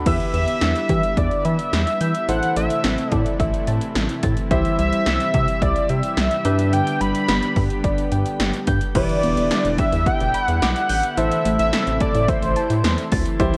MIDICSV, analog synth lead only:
0, 0, Header, 1, 2, 480
1, 0, Start_track
1, 0, Key_signature, 1, "minor"
1, 0, Tempo, 555556
1, 55, Time_signature, 4, 2, 24, 8
1, 11724, End_track
2, 0, Start_track
2, 0, Title_t, "Analog synth lead"
2, 0, Program_c, 0, 81
2, 54, Note_on_c, 0, 76, 97
2, 278, Note_off_c, 0, 76, 0
2, 293, Note_on_c, 0, 76, 103
2, 1015, Note_on_c, 0, 74, 94
2, 1027, Note_off_c, 0, 76, 0
2, 1255, Note_on_c, 0, 76, 109
2, 1268, Note_off_c, 0, 74, 0
2, 1977, Note_on_c, 0, 78, 118
2, 1990, Note_off_c, 0, 76, 0
2, 2211, Note_off_c, 0, 78, 0
2, 2216, Note_on_c, 0, 76, 104
2, 2708, Note_off_c, 0, 76, 0
2, 2708, Note_on_c, 0, 74, 104
2, 2901, Note_off_c, 0, 74, 0
2, 3895, Note_on_c, 0, 76, 93
2, 4118, Note_off_c, 0, 76, 0
2, 4135, Note_on_c, 0, 76, 101
2, 4856, Note_on_c, 0, 74, 95
2, 4868, Note_off_c, 0, 76, 0
2, 5095, Note_on_c, 0, 76, 107
2, 5108, Note_off_c, 0, 74, 0
2, 5817, Note_on_c, 0, 79, 109
2, 5829, Note_off_c, 0, 76, 0
2, 6056, Note_on_c, 0, 83, 115
2, 6068, Note_off_c, 0, 79, 0
2, 6775, Note_off_c, 0, 83, 0
2, 7735, Note_on_c, 0, 74, 108
2, 8456, Note_on_c, 0, 76, 103
2, 8469, Note_off_c, 0, 74, 0
2, 8691, Note_off_c, 0, 76, 0
2, 8696, Note_on_c, 0, 79, 117
2, 9024, Note_off_c, 0, 79, 0
2, 9024, Note_on_c, 0, 78, 117
2, 9175, Note_off_c, 0, 78, 0
2, 9175, Note_on_c, 0, 78, 111
2, 9655, Note_on_c, 0, 76, 109
2, 9668, Note_off_c, 0, 78, 0
2, 10010, Note_off_c, 0, 76, 0
2, 10015, Note_on_c, 0, 76, 99
2, 10350, Note_off_c, 0, 76, 0
2, 10377, Note_on_c, 0, 74, 97
2, 10616, Note_on_c, 0, 72, 87
2, 10629, Note_off_c, 0, 74, 0
2, 11336, Note_off_c, 0, 72, 0
2, 11724, End_track
0, 0, End_of_file